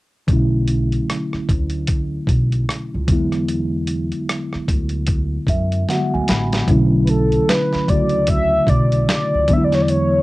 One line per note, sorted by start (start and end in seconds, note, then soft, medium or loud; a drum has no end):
0.27 0.96 B1 medium
0.27 3.04 D3 medium
0.27 3.04 F#3 medium
0.27 3.05 A3 medium
0.27 3.05 C#4 soft
0.27 kick medium
0.27 closed hi-hat medium
0.33 3.06 E4 medium
0.67 closed hi-hat soft
0.92 closed hi-hat soft
1.10 cross-stick medium
1.10 closed hi-hat medium
1.33 muted upright bass stroke soft
1.33 cross-stick soft
1.49 2.17 D2 medium
1.49 kick medium
1.49 closed hi-hat medium
1.70 closed hi-hat soft
1.87 kick medium
1.87 closed hi-hat medium
2.27 2.62 B1 medium
2.27 kick medium
2.27 closed hi-hat soft
2.52 closed hi-hat soft
2.69 cross-stick medium
2.69 closed hi-hat medium
2.94 3.07 C#2 medium
3.07 4.11 E2 medium
3.07 5.84 D3 medium
3.07 5.84 F#3 medium
3.07 3.17 G3 soft
3.07 5.85 B3 medium
3.07 kick medium
3.07 closed hi-hat medium
3.12 5.86 E4 medium
3.16 5.88 G#3 medium
3.32 cross-stick soft
3.32 closed hi-hat soft
3.49 closed hi-hat medium
3.87 closed hi-hat medium
4.12 closed hi-hat soft
4.29 cross-stick medium
4.29 closed hi-hat medium
4.53 muted upright bass stroke soft
4.53 cross-stick soft
4.68 5.37 D2 medium
4.68 kick medium
4.68 closed hi-hat medium
4.89 closed hi-hat soft
5.07 kick medium
5.07 closed hi-hat medium
5.47 5.82 F#2 medium
5.47 5.86 E5 medium
5.47 kick medium
5.47 closed hi-hat soft
5.72 closed hi-hat soft
5.88 6.67 D3 soft
5.88 6.68 F#3 soft
5.88 5.96 G3 soft
5.88 6.69 B3 soft
5.88 6.69 F#4 medium
5.88 6.11 F#5 medium
5.88 snare soft
5.88 closed hi-hat medium
5.96 6.72 G#3 soft
6.14 6.27 D2 medium
6.14 6.28 G#5 medium
6.28 6.63 A1 medium
6.28 6.66 B5 medium
6.28 snare medium
6.28 closed hi-hat medium
6.53 snare medium
6.53 closed hi-hat soft
6.68 7.36 B1 medium
6.68 7.73 D3 medium
6.68 7.73 F#3 medium
6.68 7.74 A3 medium
6.68 7.74 C#4 medium
6.68 7.74 E4 medium
6.68 kick loud
6.68 closed hi-hat medium
7.04 7.11 B4 medium
7.04 closed hi-hat soft
7.09 7.50 A4 medium
7.32 closed hi-hat soft
7.49 7.91 B4 medium
7.49 finger snap medium
7.49 snare medium
7.49 closed hi-hat medium
7.73 muted upright bass stroke soft
7.73 snare soft
7.88 8.57 D2 medium
7.88 9.27 C#3 medium
7.88 9.26 D3 medium
7.88 9.27 F#3 medium
7.88 9.27 A3 medium
7.88 9.28 F#4 medium
7.88 8.29 D5 medium
7.88 kick medium
7.88 closed hi-hat medium
8.09 closed hi-hat soft
8.27 8.71 E5 loud
8.27 kick medium
8.27 closed hi-hat medium
8.67 9.02 B1 medium
8.67 9.09 D5 loud
8.67 kick medium
8.67 closed hi-hat soft
8.92 closed hi-hat soft
9.09 9.55 D5 medium
9.09 finger snap medium
9.09 snare medium
9.09 closed hi-hat medium
9.34 9.47 C#2 medium
9.48 10.22 E2 medium
9.48 10.22 D3 medium
9.48 10.22 F#3 medium
9.48 10.22 G#3 medium
9.48 10.22 B3 medium
9.48 9.57 D4 medium
9.48 kick medium
9.48 closed hi-hat medium
9.53 9.66 E5 medium
9.57 10.22 E4 medium
9.64 9.76 D5 medium
9.72 9.83 C#5 medium
9.72 snare soft
9.72 closed hi-hat soft
9.82 9.91 D5 medium
9.88 10.22 C#5 loud
9.88 closed hi-hat medium